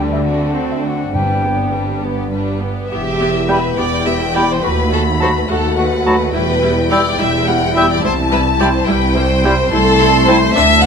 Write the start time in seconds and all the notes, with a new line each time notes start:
Already playing: D2 D3 G3 D4 B4
0.12 E5
0.25 A3 C4 D4 F#4 F#5
0.54 C4 F#4 A4
0.72 E5
0.84 A3 D4 F#4 F#5
1.13 G1 G2 G3 D4 B4 G5
1.43 B3 G4
1.73 G3 D4 B4
2.02 B3 G4
2.31 G3 D4 B4
2.61 B3 G4
2.90 E1 E2 B3 E4 G4 E5
3.20 B3 G4
3.48 G3 B3 E4 G4 B4 G5 B5
3.77 E1 E2 B3 G4 D5 G5
4.06 B3 G4 E5
4.35 G3 B3 E4 G4 D5 G5 B5
4.51 C5
4.62 D#2 A3 F#4 B4 B5
4.92 A3 F#4 A4
5.20 F#3 A3 F#4 C5 A5 B5
5.38 B4
5.48 D#2 A3 F#4 A4 F#5
5.77 A3 F#4 B4
6.06 F#3 A3 F#4 A5 B5
6.32 E1 E2 G3 E4 B4 G5
6.62 G3 E4
6.90 G3 E4 D5 G5 E6
7.17 E1 E2 G3 E4 E5
7.48 G3 E4 F#5
7.75 G3 E4 E5 G5 E6
7.91 D5
8.03 C2 G3 E4 C5 A5
8.32 G3 E4 B4
8.60 G3 E4 D5 G5 C6
8.75 C5
8.87 C2 G3 E4 B4 G5
9.15 G3 E4 C5
9.43 G3 E4 G5 C6
9.71 C2 A3 E4 A4 C6
9.99 A3 E4
10.27 A3 C4 E4 C5 A5 C6
10.56 D2 C4 D4 E5 A5